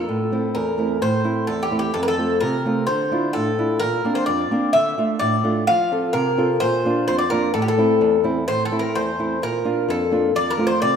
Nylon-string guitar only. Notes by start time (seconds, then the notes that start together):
0.09 A2
0.32 A3 C4 E4
0.55 E2
0.78 A3 C4 E4
1.02 A2
1.24 A3 C4 E4
1.49 E2
1.71 A3 C4 E4
1.95 F2
2.18 A3 C4 F4
2.42 C3
2.65 A3 C4 F4
2.89 D3
3.11 D4 E4 F4
3.36 A2
3.59 D4 E4 F4
3.82 A#2
4.04 A#3 C4 D4
4.28 F2
4.51 A#3 C4 D4
4.75 D3
4.98 A3 D4 F4
5.21 A2
5.44 A3 D4 F4
5.68 F3
5.91 C4 F4 A4
6.14 C3
6.37 C4 F4 A4
6.62 A#2
6.85 A#3 D4 F4
7.09 F2
7.31 A#3 D4 F4
7.55 A2
7.78 A3 C4 E4
8.01 E2
8.24 A3 C4 E4
8.48 A2
8.72 A3 C4 E4
8.96 E2
9.19 A3 C4 E4
9.42 A#2
9.64 A#3 D4 F4
9.89 F2
10.12 A#3 D4 F4
10.35 F2
10.58 A3 C4 F4
10.82 C3